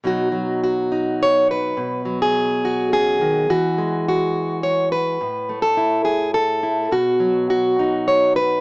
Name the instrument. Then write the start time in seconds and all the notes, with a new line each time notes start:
steel-string acoustic guitar
0.04 B2 F#3 D#4 F#4
0.32 F#3
0.64 F#4
0.92 D#4
1.23 C#5
1.51 B4
1.77 B2
2.05 F#3
2.22 G#4
2.65 F#4
2.92 C#3 G#4
3.21 D#3
3.50 E3 F#4
3.78 G#3
4.08 F#4
4.63 C#5
4.92 B4
5.21 A2
5.49 A3
5.62 A4
5.77 E4
6.05 G#4
6.34 A4
6.63 E4
6.91 B2 F#4
7.20 F#3
7.50 F#4
7.79 D#4
8.08 C#5
8.36 B4